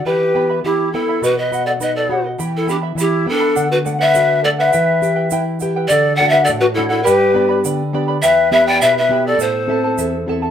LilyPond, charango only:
\new Staff \with { instrumentName = "Charango" } { \time 2/4 \key e \minor \tempo 4 = 103 <e' g' e'' g'' b''>8 <e' e'' g'' b''>16 <e' e'' b''>16 <e' e'' g'' b''>8 <e' e'' g'' b''>16 <e' e'' b''>16 | <b' dis'' fis''>8 <b' dis'' fis''>16 <dis'' fis''>16 <b' dis'' fis''>8 <b' dis'' fis''>16 <dis'' fis''>16 | <e' g' e'' g'' b''>8 <e' e'' g'' b''>16 <e' e'' b''>16 <e' e'' g'' b''>8 <e' e'' g'' b''>16 <e' e'' b''>16 | <a' d'' fis''>8 <a' d'' fis''>16 <d'' fis''>16 <a' d'' fis''>8 <a' d'' fis''>16 <d'' fis''>16 |
<e' g' b' e'' g''>8 <e' b' e'' g''>16 <e' b' g''>16 <e' b' e'' g''>8 <e' b' e'' g''>16 <e' b' g''>16 | <a' d'' fis''>8 <a' d'' fis''>16 <d'' fis''>16 <a' d'' fis''>8 <a' d'' fis''>16 <d'' fis''>16 | <g' b' d'' g'' b''>8 <b' d'' g'' b''>16 <b' d'' b''>16 <b' d'' g'' b''>8 <b' d'' g'' b''>16 <b' d'' b''>16 | <e' g' e'' g'' b''>8 <e' e'' g'' b''>16 <e' e'' b''>16 <e' e'' g'' b''>8 <e' e'' g'' b''>16 <e' e'' b''>16 |
<e' a' c'' e'' a''>8 <e' a' e'' a''>16 <e' a' a''>16 <e' a' e'' a''>8 <e' a' e'' a''>16 <e' a' a''>16 | }